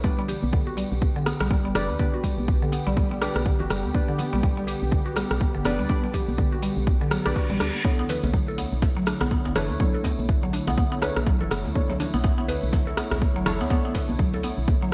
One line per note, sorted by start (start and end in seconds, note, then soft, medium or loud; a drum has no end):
0.00 0.36 B1 medium
0.00 0.17 G3 loud
0.04 14.94 D3 medium
0.04 7.81 B3 medium
0.04 1.73 D4 medium
0.04 1.73 G4 medium
0.04 7.81 G4 medium
0.04 1.73 B4 medium
0.04 1.73 D5 medium
0.04 kick loud
0.04 tambourine soft
0.04 high conga loud
0.19 0.24 G3 loud
0.28 0.36 G4 medium
0.28 open hi-hat medium
0.28 tambourine loud
0.28 muted conga medium
0.28 low conga medium
0.42 0.85 B1 loud
0.42 tambourine soft
0.42 high conga loud
0.53 0.66 D3 medium
0.53 kick loud
0.53 tambourine soft
0.67 0.76 F#4 medium
0.67 muted conga soft
0.77 0.90 G3 medium
0.77 open hi-hat medium
0.77 tambourine loud
0.92 1.33 B1 medium
0.92 tambourine medium
1.01 kick loud
1.01 tambourine soft
1.01 muted conga soft
1.16 1.26 D3 loud
1.26 1.40 B3 medium
1.26 cross-stick medium
1.26 open hi-hat medium
1.26 tambourine medium
1.40 1.67 B1 medium
1.40 1.50 G3 loud
1.40 cross-stick medium
1.40 tambourine medium
1.51 1.64 G3 loud
1.51 kick loud
1.51 tambourine soft
1.51 muted conga soft
1.51 high conga medium
1.65 1.72 F#1 loud
1.65 1.71 G3 loud
1.75 1.91 F#1 medium
1.75 1.97 D4 medium
1.75 1.83 G4 medium
1.75 1.97 G4 medium
1.75 1.97 B4 medium
1.75 1.97 D5 loud
1.75 cross-stick loud
1.75 open hi-hat medium
1.75 tambourine medium
1.75 low conga medium
1.89 1.96 D2 medium
1.89 tambourine medium
1.89 muted conga soft
1.99 2.12 D3 medium
1.99 3.19 D4 loud
1.99 3.19 G4 medium
1.99 3.19 B4 medium
1.99 3.19 D5 loud
1.99 kick loud
1.99 tambourine soft
1.99 high conga loud
2.14 2.23 F#4 medium
2.24 2.37 G3 medium
2.24 kick medium
2.24 open hi-hat medium
2.24 tambourine medium
2.24 muted conga soft
2.38 2.80 B1 medium
2.38 tambourine medium
2.38 high conga loud
2.48 kick loud
2.48 tambourine soft
2.62 2.72 D3 loud
2.62 muted conga soft
2.72 2.86 B3 medium
2.72 open hi-hat medium
2.72 tambourine medium
2.87 3.28 B1 medium
2.87 2.96 G3 loud
2.87 tambourine soft
2.97 3.10 G3 loud
2.97 kick loud
2.97 tambourine soft
2.97 muted conga soft
2.97 high conga medium
3.11 3.17 G3 loud
3.22 3.41 D4 medium
3.22 3.29 G4 medium
3.22 3.41 G4 medium
3.22 3.41 B4 medium
3.22 3.41 D5 loud
3.22 cross-stick medium
3.22 open hi-hat medium
3.22 tambourine loud
3.35 3.62 B1 medium
3.35 cross-stick medium
3.35 tambourine medium
3.35 high conga medium
3.45 3.59 D3 medium
3.45 kick loud
3.45 tambourine soft
3.45 muted conga soft
3.60 3.67 F#1 loud
3.60 3.69 F#4 medium
3.60 low conga loud
3.70 3.86 F#1 medium
3.70 3.83 G3 medium
3.70 cross-stick medium
3.70 open hi-hat medium
3.70 tambourine medium
3.85 3.92 D2 medium
3.85 tambourine soft
3.85 muted conga soft
3.95 5.63 D4 medium
3.95 5.63 G4 medium
3.95 5.63 B4 medium
3.95 5.63 D5 medium
3.95 kick loud
3.95 tambourine soft
3.95 high conga loud
4.08 4.18 D3 loud
4.19 4.32 B3 medium
4.19 open hi-hat medium
4.19 tambourine medium
4.19 muted conga medium
4.19 low conga medium
4.33 4.75 B1 loud
4.33 4.42 G3 loud
4.33 tambourine soft
4.33 high conga medium
4.43 4.56 G3 loud
4.43 kick loud
4.43 tambourine soft
4.57 4.63 G3 loud
4.57 muted conga soft
4.67 4.75 G4 medium
4.67 open hi-hat medium
4.67 tambourine medium
4.82 5.24 B1 medium
4.82 tambourine soft
4.91 5.05 D3 medium
4.91 kick loud
4.91 tambourine soft
4.91 muted conga medium
5.06 5.15 F#4 medium
5.16 5.29 G3 medium
5.16 cross-stick medium
5.16 open hi-hat medium
5.16 tambourine loud
5.30 5.57 B1 medium
5.30 cross-stick medium
5.30 tambourine soft
5.40 kick loud
5.40 tambourine soft
5.40 muted conga soft
5.40 high conga medium
5.55 5.62 F#1 loud
5.55 5.65 D3 loud
5.65 5.81 F#1 loud
5.65 5.79 B3 medium
5.65 5.88 D4 medium
5.65 5.87 G4 medium
5.65 5.87 B4 medium
5.65 5.88 D5 loud
5.65 cross-stick medium
5.65 open hi-hat medium
5.65 tambourine medium
5.65 low conga medium
5.78 5.87 D2 medium
5.78 5.88 G3 loud
5.78 tambourine soft
5.78 muted conga medium
5.89 6.02 G3 loud
5.89 7.09 D4 loud
5.89 7.09 G4 medium
5.89 7.09 B4 medium
5.89 7.09 D5 loud
5.89 kick loud
5.89 tambourine soft
5.89 high conga loud
6.04 6.09 G3 loud
6.13 6.22 G4 medium
6.13 kick medium
6.13 open hi-hat medium
6.13 tambourine medium
6.13 muted conga medium
6.13 low conga medium
6.28 6.70 B1 medium
6.28 tambourine soft
6.28 high conga loud
6.38 6.51 D3 medium
6.38 kick loud
6.38 tambourine soft
6.52 6.62 F#4 medium
6.52 muted conga soft
6.62 6.76 G3 medium
6.62 open hi-hat medium
6.62 tambourine medium
6.76 7.19 B1 medium
6.76 tambourine medium
6.87 kick loud
6.87 tambourine soft
6.87 reverse cymbal medium
6.87 muted conga medium
6.87 high conga loud
7.01 7.11 D3 loud
7.11 7.24 F#3 medium
7.11 cross-stick medium
7.11 open hi-hat medium
7.11 tambourine loud
7.26 7.33 B1 medium
7.26 7.83 D4 medium
7.26 7.31 G4 medium
7.26 7.83 G4 medium
7.26 7.83 B4 medium
7.26 7.83 D5 medium
7.26 cross-stick medium
7.26 tambourine soft
7.26 high conga medium
7.36 7.49 F#4 medium
7.36 kick loud
7.36 tambourine soft
7.36 muted conga soft
7.50 7.57 B1 loud
7.50 7.60 G3 loud
7.50 low conga loud
7.60 7.70 D2 medium
7.60 7.68 D4 medium
7.60 cross-stick medium
7.60 open hi-hat medium
7.60 tambourine medium
7.75 tambourine soft
7.75 muted conga medium
7.84 14.94 A3 medium
7.84 7.98 B3 loud
7.84 9.53 D4 medium
7.84 9.53 E4 medium
7.84 14.94 E4 medium
7.84 9.53 A4 medium
7.84 9.53 C#5 medium
7.84 14.94 C#5 medium
7.84 kick loud
7.84 tambourine soft
7.84 high conga loud
7.99 8.05 B3 loud
7.99 djembe tone medium
8.09 8.17 B4 medium
8.09 open hi-hat medium
8.09 tambourine medium
8.09 muted conga medium
8.09 djembe slap medium
8.09 low conga medium
8.23 8.65 B1 loud
8.23 tambourine medium
8.23 high conga loud
8.23 djembe tone medium
8.34 8.47 F#3 medium
8.34 kick loud
8.34 tambourine soft
8.47 8.57 A4 medium
8.47 muted conga soft
8.58 8.71 B3 medium
8.58 open hi-hat loud
8.58 tambourine loud
8.58 djembe tone medium
8.72 9.14 B1 medium
8.72 tambourine soft
8.82 kick loud
8.82 tambourine soft
8.82 muted conga medium
8.82 djembe slap medium
8.82 djembe tone loud
8.97 9.06 F#3 loud
9.06 9.21 D4 medium
9.06 cross-stick medium
9.06 open hi-hat loud
9.06 tambourine medium
9.21 9.47 B1 medium
9.21 9.30 B3 loud
9.21 cross-stick medium
9.21 tambourine medium
9.21 djembe tone medium
9.31 9.44 B3 loud
9.31 kick loud
9.31 tambourine soft
9.31 muted conga soft
9.31 high conga loud
9.45 9.53 F#1 loud
9.45 9.51 B3 loud
9.45 djembe tone medium
9.55 9.71 F#1 medium
9.55 9.78 D4 loud
9.55 9.78 E4 medium
9.55 9.78 A4 medium
9.55 9.63 B4 medium
9.55 9.78 C#5 loud
9.55 cross-stick loud
9.55 open hi-hat medium
9.55 tambourine loud
9.55 low conga loud
9.70 9.77 D2 medium
9.70 tambourine medium
9.70 muted conga medium
9.79 9.93 F#3 medium
9.79 11.00 D4 medium
9.79 11.00 E4 medium
9.79 11.00 A4 medium
9.79 11.00 C#5 loud
9.79 kick loud
9.79 tambourine soft
9.79 high conga loud
9.79 djembe tone medium
9.94 10.03 A4 medium
10.04 10.17 B3 medium
10.04 kick medium
10.04 open hi-hat medium
10.04 tambourine medium
10.04 djembe slap medium
10.04 muted conga medium
10.04 djembe tone medium
10.19 10.60 B1 loud
10.19 tambourine medium
10.19 high conga loud
10.29 kick loud
10.29 tambourine soft
10.43 10.53 F#3 loud
10.43 muted conga soft
10.43 djembe tone medium
10.53 10.67 D4 medium
10.53 open hi-hat medium
10.53 tambourine medium
10.67 11.09 B1 medium
10.67 10.76 B3 loud
10.67 tambourine medium
10.67 djembe tone loud
10.78 10.91 B3 loud
10.78 kick loud
10.78 tambourine soft
10.78 muted conga soft
10.78 high conga loud
10.92 10.97 B3 loud
11.02 11.21 D4 medium
11.02 11.21 E4 medium
11.02 11.21 A4 medium
11.02 11.10 B4 medium
11.02 11.21 C#5 loud
11.02 cross-stick medium
11.02 open hi-hat medium
11.02 tambourine medium
11.02 djembe tone medium
11.17 11.42 B1 medium
11.17 cross-stick medium
11.17 tambourine soft
11.17 high conga medium
11.26 11.39 F#3 medium
11.26 kick loud
11.26 tambourine soft
11.26 muted conga soft
11.26 djembe tone loud
11.40 11.48 F#1 loud
11.40 11.50 A4 medium
11.40 low conga loud
11.51 11.67 F#1 medium
11.51 11.64 B3 medium
11.51 cross-stick loud
11.51 open hi-hat loud
11.51 tambourine medium
11.65 11.72 D2 medium
11.65 tambourine medium
11.65 muted conga medium
11.65 djembe tone medium
11.75 13.44 D4 medium
11.75 13.44 E4 medium
11.75 13.44 A4 medium
11.75 13.44 C#5 medium
11.75 kick loud
11.75 tambourine soft
11.75 high conga loud
11.90 11.99 F#3 loud
11.90 djembe tone loud
12.00 12.13 D4 medium
12.00 open hi-hat medium
12.00 tambourine medium
12.00 muted conga medium
12.00 djembe slap medium
12.00 low conga medium
12.14 12.55 B1 loud
12.14 12.23 B3 loud
12.14 tambourine medium
12.14 high conga loud
12.24 12.37 B3 loud
12.24 kick loud
12.24 tambourine soft
12.24 djembe tone medium
12.38 12.44 B3 loud
12.38 muted conga soft
12.48 12.56 B4 medium
12.48 open hi-hat medium
12.48 tambourine medium
12.48 djembe tone loud
12.63 13.04 B1 medium
12.63 tambourine medium
12.72 12.86 F#3 medium
12.72 kick loud
12.72 tambourine soft
12.72 muted conga soft
12.72 djembe slap medium
12.87 12.96 A4 medium
12.87 djembe tone medium
12.97 13.10 B3 medium
12.97 cross-stick medium
12.97 open hi-hat medium
12.97 tambourine medium
13.11 13.38 B1 medium
13.11 cross-stick loud
13.11 tambourine medium
13.11 djembe tone loud
13.21 kick loud
13.21 tambourine soft
13.21 muted conga soft
13.21 high conga loud
13.36 13.43 F#1 loud
13.36 13.46 F#3 loud
13.46 13.62 F#1 medium
13.46 13.68 D4 medium
13.46 13.60 D4 medium
13.46 13.68 E4 medium
13.46 13.68 A4 medium
13.46 13.68 C#5 loud
13.46 cross-stick loud
13.46 open hi-hat loud
13.46 tambourine loud
13.46 djembe tone medium
13.46 low conga medium
13.59 13.67 D2 medium
13.59 13.70 B3 loud
13.59 tambourine medium
13.59 muted conga soft
13.70 13.84 B3 loud
13.70 14.90 D4 medium
13.70 14.90 E4 medium
13.70 14.90 A4 medium
13.70 14.90 C#5 loud
13.70 kick loud
13.70 tambourine soft
13.70 high conga loud
13.70 djembe tone loud
13.85 13.90 B3 loud
13.95 14.03 B4 medium
13.95 kick medium
13.95 open hi-hat medium
13.95 tambourine medium
13.95 djembe slap medium
13.95 muted conga medium
14.09 14.51 B1 loud
14.09 tambourine medium
14.09 high conga loud
14.09 djembe tone medium
14.19 14.32 F#3 medium
14.19 kick loud
14.33 14.43 A4 medium
14.33 muted conga soft
14.33 djembe tone medium
14.43 14.57 B3 medium
14.43 open hi-hat medium
14.43 tambourine loud
14.58 14.94 B1 medium
14.58 tambourine medium
14.68 kick loud
14.68 tambourine soft
14.68 muted conga soft
14.68 high conga loud
14.68 djembe tone medium
14.82 14.92 F#3 loud